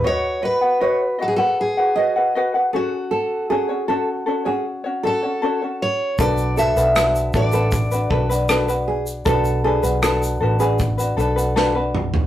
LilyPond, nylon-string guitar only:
\new Staff \with { instrumentName = "Nylon-string guitar" } { \time 4/4 \key b \mixolydian \tempo 4 = 78 cis''8 b'8 cis''16 r8 b'16 r8 dis''8 r8 gis'16 r16 | a'8 gis'8 a'16 r8 gis'16 r8 a'8. r8. | b'8 a'8 b'16 r8 a'16 r8 b'8 r8 gis'16 r16 | a'8 gis'8 a'16 r8 gis'16 r8 a'8. r8. | }